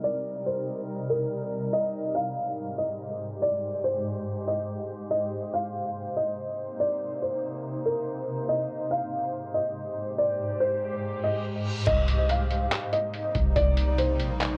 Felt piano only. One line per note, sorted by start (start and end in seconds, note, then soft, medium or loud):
0.04 0.44 D5 medium
0.46 1.06 C5 medium
1.09 1.69 A#4 medium
1.73 2.13 D#5 loud
2.15 2.75 F5 medium
2.78 3.38 D#5 medium
3.42 3.82 D5 loud
3.84 4.44 C5 medium
4.48 4.68 D#5 medium
5.11 5.51 D#5 loud
5.54 6.13 F5 medium
6.17 6.76 D#5 medium
6.80 7.20 D5 medium
7.22 7.82 C5 medium
7.86 8.45 A#4 medium
8.49 8.89 D#5 loud
8.91 9.51 F5 medium
9.54 10.14 D#5 medium
10.18 10.58 D5 loud
10.60 11.20 C5 medium
11.24 11.44 D#5 medium
11.87 12.27 D#5 loud
12.30 12.89 F5 medium
12.93 13.52 D#5 medium
13.56 13.96 D5 loud
13.98 14.57 C5 medium